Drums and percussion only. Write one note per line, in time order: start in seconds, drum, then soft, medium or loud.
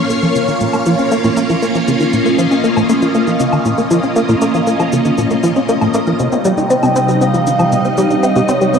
0.10 shaker medium
0.22 shaker soft
0.35 shaker medium
0.48 shaker soft
0.61 shaker medium
0.73 low woodblock medium
0.73 shaker soft
0.86 shaker medium
0.98 shaker soft
1.11 shaker medium
1.24 shaker soft
1.37 shaker medium
1.49 shaker soft
1.62 shaker medium
1.75 shaker soft
1.88 shaker medium
2.00 shaker soft
2.13 shaker medium
2.26 shaker soft
2.39 shaker medium
2.51 shaker soft
2.64 shaker medium
2.77 low woodblock medium
2.77 shaker soft
2.89 shaker medium
3.02 shaker soft
3.15 shaker medium
3.27 shaker soft
3.40 shaker medium
3.53 low woodblock medium
3.53 shaker soft
3.65 shaker medium
3.78 shaker soft
3.91 shaker medium
4.03 shaker soft
4.16 shaker medium
4.29 shaker soft
4.41 shaker medium
4.54 shaker soft
4.67 shaker medium
4.80 low woodblock medium
4.80 shaker soft
4.92 shaker medium
5.05 shaker soft
5.18 shaker medium
5.31 shaker soft
5.43 shaker medium
5.56 shaker soft
5.69 shaker medium
5.81 low woodblock medium
5.81 shaker soft
5.94 shaker medium
6.07 shaker soft
6.19 shaker medium
6.32 shaker soft
6.45 shaker medium
6.58 shaker soft
6.70 shaker medium
6.83 low woodblock medium
6.83 shaker soft
6.96 shaker medium
7.09 shaker soft
7.21 shaker medium
7.34 shaker soft
7.47 shaker medium
7.59 low woodblock medium
7.59 shaker soft
7.72 shaker medium
7.85 shaker soft
7.97 shaker medium
8.10 shaker soft
8.23 shaker medium
8.36 shaker soft
8.48 shaker medium
8.61 shaker soft
8.74 shaker medium